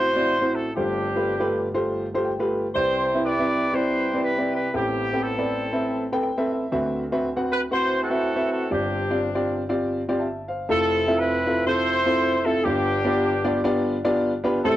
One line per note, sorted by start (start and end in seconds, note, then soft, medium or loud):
0.00 0.71 A1 medium
0.00 0.71 A2 medium
0.00 0.72 E4 medium
0.00 0.72 F#4 medium
0.00 0.56 C5 medium
0.16 0.32 C4 medium
0.16 0.32 E4 medium
0.16 0.32 F#4 medium
0.16 0.32 D5 medium
0.41 0.67 C4 medium
0.41 0.67 E4 medium
0.41 0.67 F#4 medium
0.41 0.67 C5 medium
0.55 0.76 A4 medium
0.76 2.71 G1 medium
0.76 2.71 G2 medium
0.76 1.07 A3 medium
0.76 1.72 C4 medium
0.76 1.72 D4 medium
0.76 1.07 F4 medium
0.76 1.71 G4 medium
0.76 1.07 G4 medium
0.76 1.07 C5 medium
1.16 1.32 A3 medium
1.16 1.31 F4 medium
1.16 1.32 G4 medium
1.16 1.32 B4 medium
1.40 1.66 A3 medium
1.40 1.66 F4 medium
1.40 1.66 G4 medium
1.40 1.66 B4 medium
1.74 2.05 A3 medium
1.74 2.05 F4 medium
1.74 2.05 G4 medium
1.74 2.05 C5 medium
2.14 2.30 A3 medium
2.14 2.31 F4 medium
2.14 2.31 G4 medium
2.14 2.31 C5 medium
2.25 2.71 G5 medium
2.39 2.65 A3 medium
2.39 2.65 F4 medium
2.39 2.66 G4 medium
2.39 2.66 B4 medium
2.74 4.70 C2 medium
2.74 4.70 C3 medium
2.74 3.05 C4 medium
2.74 3.05 E4 medium
2.74 3.70 E4 medium
2.74 3.23 G4 medium
2.74 3.06 B4 medium
2.74 3.21 C5 medium
2.74 3.06 D5 medium
3.14 3.30 C4 medium
3.14 3.30 E4 medium
3.14 3.31 B4 medium
3.14 3.31 E5 medium
3.25 3.73 G4 medium
3.25 4.20 B4 medium
3.25 3.74 D5 loud
3.39 3.65 C4 medium
3.39 3.65 E4 medium
3.39 3.65 B4 medium
3.39 3.65 E5 medium
3.73 4.04 C4 medium
3.73 4.04 E4 medium
3.73 4.70 E4 medium
3.73 4.69 G4 medium
3.73 4.04 B4 medium
3.73 4.24 C5 loud
3.73 4.04 D5 medium
4.14 4.30 C4 medium
4.14 4.30 E4 medium
4.14 4.30 B4 medium
4.14 4.30 D5 medium
4.23 4.51 B4 medium
4.38 4.64 C4 medium
4.38 4.64 E4 medium
4.38 4.64 B4 medium
4.38 4.64 D5 medium
4.54 4.72 B4 medium
4.74 6.68 A1 medium
4.74 6.68 A2 medium
4.74 5.70 B3 medium
4.74 5.04 C4 medium
4.74 5.22 C4 medium
4.74 5.24 G4 medium
4.74 5.04 A4 medium
4.74 5.04 B4 medium
4.74 5.04 G5 medium
5.13 5.29 C4 medium
5.13 5.29 A4 medium
5.13 5.29 B4 medium
5.13 5.29 G5 medium
5.23 6.18 C4 medium
5.23 6.18 E4 medium
5.23 6.23 A4 medium
5.38 5.64 C4 medium
5.38 5.64 A4 medium
5.38 5.64 B4 medium
5.38 5.64 D5 medium
5.73 6.03 C4 medium
5.73 6.03 A4 medium
5.73 6.03 B4 medium
5.73 6.04 E5 medium
6.12 6.28 C4 medium
6.12 6.28 A4 medium
6.12 6.28 B4 medium
6.12 6.22 G5 medium
6.23 6.50 G5 medium
6.37 6.63 C4 medium
6.37 6.63 A4 medium
6.37 6.63 B4 medium
6.37 6.51 E5 medium
6.52 6.71 E5 medium
6.72 8.67 D2 medium
6.72 8.67 D3 medium
6.72 7.03 C4 medium
6.72 7.03 F#4 medium
6.72 7.03 B4 medium
6.72 7.03 E5 medium
7.12 7.28 C4 medium
7.12 7.28 F#4 medium
7.12 7.28 B4 medium
7.12 7.28 E5 medium
7.36 7.62 C4 medium
7.36 7.62 F#4 medium
7.36 7.62 B4 medium
7.36 7.62 F#5 medium
7.52 7.61 B4 medium
7.71 8.02 C4 medium
7.71 8.67 E4 medium
7.71 8.02 F#4 medium
7.71 8.02 B4 medium
7.71 8.00 C5 loud
7.71 8.02 F#5 medium
8.03 8.67 C4 medium
8.03 8.68 F#4 medium
8.03 8.52 A4 loud
8.10 8.26 C4 medium
8.10 8.27 F#4 medium
8.10 8.27 B4 medium
8.10 8.27 E5 medium
8.36 8.62 C4 medium
8.36 8.61 F#4 medium
8.36 8.62 B4 medium
8.36 8.62 E5 medium
8.53 8.70 A4 medium
8.70 10.65 G1 medium
8.70 10.65 G2 medium
8.70 9.01 C4 medium
8.70 9.66 C4 medium
8.70 9.66 D4 medium
8.70 9.01 F4 medium
8.70 9.01 G4 medium
8.70 9.21 G4 medium
8.70 9.01 D5 medium
9.10 9.26 C4 medium
9.10 9.26 F4 medium
9.10 9.26 G4 medium
9.10 9.26 D5 medium
9.35 9.61 C4 medium
9.35 9.61 F4 medium
9.35 9.61 G4 medium
9.35 9.61 D5 medium
9.69 10.00 C4 medium
9.69 10.00 F4 medium
9.69 10.00 G4 medium
9.69 10.00 D5 medium
10.09 10.25 C4 medium
10.09 10.25 F4 medium
10.09 10.25 G4 medium
10.09 10.19 D5 medium
10.19 10.48 E5 soft
10.19 10.47 A5 medium
10.48 10.96 C5 soft
10.48 10.96 F5 medium
10.69 12.63 F1 medium
10.69 12.63 F2 medium
10.69 10.99 C4 medium
10.69 11.65 C4 medium
10.69 10.99 E4 medium
10.69 11.19 E4 medium
10.69 11.00 F4 medium
10.69 10.99 A4 medium
10.69 11.16 A4 medium
10.69 11.00 E5 medium
11.08 11.34 C4 medium
11.08 11.34 E4 medium
11.08 11.34 F4 medium
11.08 11.34 A4 medium
11.08 11.35 E5 medium
11.19 11.68 E4 medium
11.19 11.68 B4 loud
11.47 11.61 C4 medium
11.47 11.61 E4 medium
11.47 11.61 F4 medium
11.47 11.61 A4 medium
11.47 11.61 E5 medium
11.66 11.98 C4 medium
11.66 11.98 E4 medium
11.66 12.64 E4 medium
11.66 11.98 F4 medium
11.66 11.98 A4 medium
11.66 12.44 A4 medium
11.66 11.98 C5 medium
11.66 12.43 C5 loud
12.06 12.33 C4 medium
12.06 12.33 E4 medium
12.06 12.33 F4 medium
12.06 12.33 A4 medium
12.06 12.33 C5 medium
12.45 12.60 C4 medium
12.45 12.60 E4 medium
12.45 12.60 F4 medium
12.45 12.66 A4 medium
12.45 12.60 A4 medium
12.45 12.61 E5 medium
12.65 14.60 G1 medium
12.65 14.60 G2 medium
12.65 12.96 B3 medium
12.65 13.62 B3 medium
12.65 12.97 D4 medium
12.65 13.62 D4 medium
12.65 12.97 F4 medium
12.65 13.65 G4 medium
12.65 12.97 G4 medium
12.65 12.97 D5 medium
13.04 13.32 B3 medium
13.04 13.32 D4 medium
13.04 13.32 F4 medium
13.04 13.32 G4 medium
13.04 13.32 D5 medium
13.44 13.59 B3 medium
13.44 13.59 D4 medium
13.44 13.59 F4 medium
13.44 13.59 G4 medium
13.44 13.59 D5 loud
13.64 13.96 B3 medium
13.64 13.96 D4 medium
13.64 13.96 F4 medium
13.64 13.96 G4 medium
13.64 13.96 D5 loud
14.05 14.31 B3 medium
14.05 14.31 D4 medium
14.05 14.31 F4 medium
14.05 14.32 G4 medium
14.05 14.31 D5 loud
14.44 14.58 B3 medium
14.44 14.59 D4 medium
14.44 14.59 F4 medium
14.44 14.59 G4 medium
14.44 14.59 B4 loud
14.64 14.77 A1 medium
14.64 14.77 A2 medium
14.64 14.77 A3 medium
14.64 14.77 C4 medium
14.64 14.77 E4 medium
14.64 14.77 G4 medium
14.64 14.77 A4 medium
14.64 14.77 C5 medium